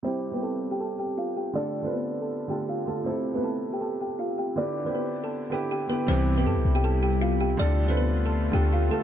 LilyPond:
<<
  \new Staff \with { instrumentName = "Kalimba" } { \time 4/4 \key c \major \tempo 4 = 159 <c' c''>8. <b b'>16 <a' a''>8. <g' g''>16 <a' a''>8 <g' g''>8 <f' f''>8 <g' g''>8 | <d' d''>8. <c' c''>16 <b b'>8. <a' a''>8. <g' g''>8 <f' f''>8 <a' a''>8 | <c' c''>8. <b b'>16 <a' a''>8. <g' g''>16 <a' a''>8 <g' g''>8 <f' f''>8 <g' g''>8 | <d' d''>8. <c' c''>16 <b b'>8. <a' a''>8. <g' g''>8 <g' g''>8 <b b'>8 |
<c' c''>8. <b b'>16 <a' a''>8. <g' g''>16 <a' a''>8 <g' g''>8 <f' f''>8 <g' g''>8 | <d' d''>8. <c' c''>16 <b b'>8. <a' a''>8. <g' g''>8 <f' f''>8 <a' a''>8 | }
  \new Staff \with { instrumentName = "Felt piano" } { \time 4/4 \key c \major <c g e' g'>8. <c g e' g'>4.~ <c g e' g'>16 r4. | <d a f' a'>8. <d a f' b'>4. r16 <d a f' a'>4 <d a f' a'>8 | <c a e' a'>8. <c a e' b'>4.~ <c a e' b'>16 r4. | <d b e' g'>8. <d b e' g'>4. r16 <d b e' g'>4 <d b e' g'>8 |
<c g e' g'>8. <c g e' g'>4.~ <c g e' g'>16 r4. | <d a f' a'>8. <d a f' b'>4. r16 <d a f' a'>4 <d a f' a'>8 | }
  \new Staff \with { instrumentName = "Ambient pad" } { \clef bass \time 4/4 \key c \major r1 | r1 | r1 | r1 |
<c g e'>1 | <d a f'>1 | }
  \new Staff \with { instrumentName = "Analog polysynth" } { \clef bass \time 4/4 \key c \major r1 | r1 | r1 | r1 |
<g, c e>4 r2. | r1 | }
  \new Staff \with { instrumentName = "808-style bass" } { \clef bass \time 4/4 \key c \major r1 | r1 | r1 | r1 |
c,4 g,16 c,16 c,2~ c,8 | d,2~ d,8 d,4 r8 | }
>>